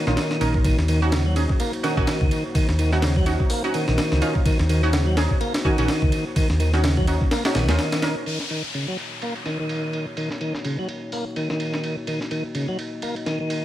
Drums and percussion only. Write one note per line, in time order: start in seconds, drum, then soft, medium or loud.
0.07 snare medium
0.17 snare loud
0.17 ride medium
0.31 snare medium
0.41 ride medium
0.54 kick medium
0.64 kick loud
0.64 ride medium
0.78 snare soft
0.88 ride medium
1.12 snare loud
1.12 ride medium
1.36 ride medium
1.49 kick medium
1.60 ride medium
1.73 ride soft
1.84 snare soft
1.84 ride medium
1.97 kick medium
2.07 snare loud
2.07 ride medium
2.21 kick loud
2.31 ride medium
2.55 kick loud
2.55 ride medium
2.69 snare soft
2.79 ride medium
2.92 snare soft
3.02 snare loud
3.02 ride medium
3.16 kick loud
3.26 ride medium
3.40 kick loud
3.50 open hi-hat medium
3.74 ride medium
3.88 snare medium
3.98 snare loud
3.98 ride medium
4.12 snare medium
4.22 ride medium
4.35 kick loud
4.45 kick loud
4.45 ride medium
4.59 snare soft
4.69 ride medium
4.93 snare loud
4.93 ride medium
5.17 snare loud
5.17 ride medium
5.31 kick medium
5.41 ride medium
5.54 snare loud
5.54 ride medium
5.65 kick medium
5.78 ride medium
5.88 snare loud
5.88 ride medium
6.02 kick loud
6.12 ride medium
6.36 kick loud
6.36 ride medium
6.50 snare soft
6.60 ride medium
6.74 snare soft
6.84 snare loud
6.84 ride medium
6.97 kick loud
7.07 ride medium
7.21 kick loud
7.31 snare loud
7.31 ride medium
7.45 snare loud
7.45 ride medium
7.55 snare loud
7.55 ride medium
7.69 snare loud
7.69 ride medium
7.79 snare loud
7.79 ride medium
7.92 snare loud
7.92 ride medium
8.02 snare loud
8.02 ride medium
8.26 ride medium
8.40 snare soft
8.50 ride medium
8.74 ride medium
8.98 ride medium
9.22 ride medium
9.35 ride soft
9.46 snare soft
9.46 ride medium
9.69 ride medium
9.93 ride medium
10.17 ride medium
10.31 snare soft
10.41 ride medium
10.55 snare soft
10.65 ride medium
10.89 ride medium
11.12 open hi-hat medium
11.36 ride medium
11.50 snare soft
11.60 ride medium
11.73 snare soft
11.84 ride medium
12.07 ride medium
12.21 snare soft
12.31 ride medium
12.55 ride medium
12.79 ride medium
13.02 ride medium
13.16 ride soft
13.26 snare soft
13.26 ride medium
13.50 ride medium